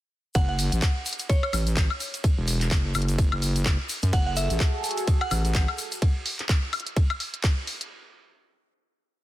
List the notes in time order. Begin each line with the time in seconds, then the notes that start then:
0.35 F#1 F#5, kick, closed hi-hat, ride, shaker
0.49 F#5
0.59 open hi-hat, shaker
0.72 A1, closed hi-hat, shaker
0.82 kick, clap, closed hi-hat, ride, shaker
1.06 open hi-hat, shaker
1.13 closed hi-hat
1.19 closed hi-hat, shaker
1.29 C#5, kick, closed hi-hat, ride, shaker
1.43 C#5, high woodblock
1.53 A1, open hi-hat, high woodblock, shaker
1.67 closed hi-hat, shaker
1.77 kick, clap, closed hi-hat, ride, shaker
1.90 high woodblock
2.00 open hi-hat, shaker
2.14 closed hi-hat, shaker
2.24 kick, closed hi-hat, ride, shaker
2.38 E1
2.48 open hi-hat, shaker
2.61 clap, closed hi-hat, shaker
2.71 F#1, kick, clap, closed hi-hat, ride, shaker
2.95 F#1, open hi-hat, high woodblock, shaker
3.02 closed hi-hat
3.08 closed hi-hat, shaker
3.18 kick, closed hi-hat, ride, shaker
3.32 F#1, high woodblock
3.42 open hi-hat, shaker
3.56 closed hi-hat, shaker
3.66 kick, clap, closed hi-hat, ride, shaker
3.89 open hi-hat, shaker
4.02 F#2, closed hi-hat, shaker
4.13 F#1 F#4 G#4 A4 F#5, kick, closed hi-hat, ride, shaker
4.27 F#5
4.37 E5, open hi-hat, shaker
4.50 A1, closed hi-hat, shaker
4.60 kick, clap, closed hi-hat, ride, shaker
4.84 open hi-hat, shaker
4.91 closed hi-hat
4.97 closed hi-hat, shaker
5.08 kick, closed hi-hat, ride, shaker
5.21 F#5, high woodblock
5.31 A1, open hi-hat, high woodblock, shaker
5.45 closed hi-hat, shaker
5.55 kick, clap, closed hi-hat, ride, shaker
5.68 high woodblock
5.78 open hi-hat, shaker
5.92 closed hi-hat, shaker
6.02 kick, closed hi-hat, ride
6.26 open hi-hat
6.39 clap, closed hi-hat
6.49 kick, clap, closed hi-hat, ride
6.73 open hi-hat, high woodblock
6.80 closed hi-hat
6.87 closed hi-hat
6.97 kick, closed hi-hat, ride
7.10 high woodblock
7.20 open hi-hat
7.34 closed hi-hat
7.44 kick, clap, closed hi-hat, ride
7.67 open hi-hat
7.81 closed hi-hat